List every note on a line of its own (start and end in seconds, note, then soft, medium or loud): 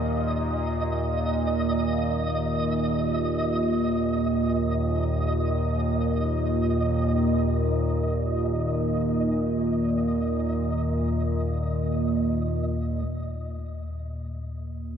0.00 13.03 D#2 medium
0.00 13.04 A#2 medium
0.00 13.08 D#5 medium
13.05 14.97 D#2 medium
13.05 14.97 A#2 medium
13.05 14.97 A#3 medium
14.15 14.97 F4 medium